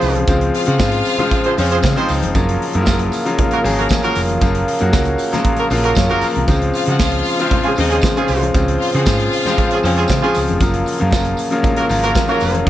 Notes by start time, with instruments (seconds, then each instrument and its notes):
Already playing: french horn section C#3 F3 C5, grand piano C#3 F3 G#3 C4 E4 F4 G#4, horn section F4 G#4 C5
0.01 fingered electric bass C2, open hi-hat, tambourine
0.15 closed hi-hat, high conga
0.27 fingered electric bass C#2, grand piano C#3 F3 G#3 C4 F4, french horn section C4, kick, closed hi-hat, tambourine, muted conga
0.41 closed hi-hat
0.53 string section F4 F5, open hi-hat
0.66 grand piano C#3 F3 G#3 C4 F4, fingered electric bass C#3, string section F#4 F#5, closed hi-hat
0.78 fingered electric bass G#2, string section F4 F5, kick, snare, tambourine, high conga
0.92 closed hi-hat
1.05 open hi-hat, tambourine
1.18 grand piano C#3 F3 G#3 C4 F4, closed hi-hat, low conga
1.31 kick, closed hi-hat, tambourine, muted conga
1.44 horn section F4 G#4 C5, closed hi-hat
1.57 fingered electric bass F2, grand piano C#3 F3 G#3 C4 F4, string section C#4 C#5, open hi-hat, tambourine
1.71 horn section F4 G#4 C5, closed hi-hat
1.82 fingered electric bass C#3, kick, snare, tambourine, high conga
1.96 grand piano C#3 F3 G#3 C4 D#4, horn section F4 G#4 C5, closed hi-hat
2.09 fingered electric bass C#2, open hi-hat, tambourine
2.23 fingered electric bass F1, closed hi-hat, high conga
2.34 fingered electric bass F#1, grand piano C#3 F3 F#3 A#3 F4, french horn section A#3 A#4 F5, kick, closed hi-hat, tambourine, muted conga
2.49 closed hi-hat
2.62 open hi-hat
2.73 fingered electric bass F#2, grand piano C#3 F3 F#3 A#3 E4, closed hi-hat
2.82 grand piano F4, high conga
2.86 fingered electric bass F#1, kick, snare, tambourine
2.99 closed hi-hat
3.12 open hi-hat, tambourine
3.26 grand piano C#3 F3 F#3 A#3 F4, closed hi-hat
3.38 kick, closed hi-hat, muted conga, low conga
3.51 horn section A#3 F#4 A#4, closed hi-hat
3.64 fingered electric bass G#1, grand piano C#3 F3 F#3 A#3 G#4, open hi-hat, tambourine
3.78 horn section A#3 F#4 A#4, closed hi-hat
3.89 kick, snare, tambourine, high conga
4.02 grand piano C#3 F3 F#3 A#3 F4, horn section A#3 F#4 A#4, closed hi-hat
4.15 fingered electric bass F1, open hi-hat, tambourine
4.29 closed hi-hat, high conga
4.40 fingered electric bass F#1, grand piano C#3 F3 F#3 A#3 F4, kick, closed hi-hat, tambourine, muted conga
4.55 closed hi-hat
4.68 open hi-hat
4.79 fingered electric bass F#2, grand piano C#3 F#3 A#3 F4 F#4, closed hi-hat
4.93 fingered electric bass C#2, kick, snare, tambourine, high conga
5.05 closed hi-hat
5.18 open hi-hat, tambourine
5.32 grand piano C#3 F3 F#3 A#3 F4, snare, closed hi-hat, low conga
5.45 kick, closed hi-hat, muted conga
5.57 horn section A#3 F#4 A#4, closed hi-hat
5.70 fingered electric bass A#1, grand piano C#3 F3 F#3 A#3 F4 F5, open hi-hat, tambourine, muted conga
5.84 horn section A#3 F#4 A#4, closed hi-hat
5.95 fingered electric bass F#2, grand piano C#5, kick, snare, tambourine, high conga
6.10 fingered electric bass F#1, grand piano C#3 F3 F#3 A#3 F4, horn section A#3 F#4 A#4, closed hi-hat
6.21 grand piano A#4, open hi-hat, tambourine
6.36 fingered electric bass C2, closed hi-hat, high conga
6.48 fingered electric bass C#2, grand piano C#3 F3 G#3 C4 F4, french horn section C#3 F3 C5, kick, closed hi-hat, tambourine, muted conga
6.62 closed hi-hat
6.74 string section F4 F5, open hi-hat, tambourine
6.86 fingered electric bass C#3, grand piano C#3 F3 G#3 C4 F4, string section F#4 F#5, closed hi-hat
6.99 fingered electric bass C#2, string section F4 F5, kick, snare, tambourine, high conga
7.12 closed hi-hat
7.24 open hi-hat, tambourine
7.39 grand piano C#3 F3 G#3 C4 F4, closed hi-hat
7.51 kick, closed hi-hat, muted conga, low conga
7.63 horn section C#4 F4 G#4, closed hi-hat
7.76 fingered electric bass D#2, grand piano C#3 F3 G#3 C4 F4, string section D#4 D#5, open hi-hat, tambourine, muted conga
7.90 horn section C#4 F4 G#4, closed hi-hat
8.01 kick, snare, tambourine, high conga
8.17 grand piano C#3 F3 G#3 C4 F4, horn section C#4 F4 G#4, closed hi-hat
8.28 fingered electric bass C2, open hi-hat, tambourine
8.42 closed hi-hat, high conga
8.54 fingered electric bass C#2, grand piano C#3 F3 G#3 C4 F4, kick, closed hi-hat, tambourine, muted conga
8.68 closed hi-hat
8.80 string section F4 F5, open hi-hat
8.93 grand piano C#3 F3 G#3 C4 G#4, fingered electric bass C#3, string section F#4 F#5, closed hi-hat
9.06 fingered electric bass G#2, string section F4 F5, kick, snare, tambourine, high conga
9.20 closed hi-hat
9.31 open hi-hat, tambourine
9.45 grand piano C#3 F3 G#3 C4 F4, snare, closed hi-hat, low conga
9.57 kick, closed hi-hat, tambourine, muted conga
9.71 horn section C#4 F4 G#4, closed hi-hat
9.83 fingered electric bass F2, grand piano C#3 F3 G#3 C4 F4, string section C#4 C#5, open hi-hat, tambourine
9.97 horn section C#4 F4 G#4, closed hi-hat
10.08 fingered electric bass C#3, kick, snare, tambourine, high conga
10.23 grand piano C#3 F3 G#3 C4 F4, horn section C#4 F4 G#4, closed hi-hat
10.34 fingered electric bass C#2, open hi-hat, tambourine
10.48 fingered electric bass F1, closed hi-hat, high conga
10.60 fingered electric bass F#1, grand piano C#3 F3 F#3 A#3 F4, french horn section A#3 A#4 F5, kick, closed hi-hat, tambourine, muted conga
10.74 closed hi-hat
10.86 open hi-hat, tambourine
10.98 fingered electric bass F#2, grand piano C#3 F3 F#3 A#3 F4, closed hi-hat
11.11 fingered electric bass F#1, kick, snare, tambourine, high conga
11.25 closed hi-hat
11.37 open hi-hat, tambourine
11.51 grand piano C#3 F3 F#3 A#3 F4, closed hi-hat
11.63 kick, closed hi-hat, tambourine, muted conga, low conga
11.77 horn section A#3 F#4 A#4, closed hi-hat
11.89 fingered electric bass G#1, grand piano C#3 F3 F#3 A#3 F4, open hi-hat, tambourine
12.03 horn section A#3 F#4 A#4, closed hi-hat
12.15 kick, snare, tambourine, high conga
12.27 grand piano C#3 F#3 A#3 F4, horn section A#3 F#4 A#4, closed hi-hat
12.40 fingered electric bass F1, open hi-hat, tambourine
12.55 closed hi-hat, high conga
12.65 grand piano C#3 F3 F#3 A#3, closed hi-hat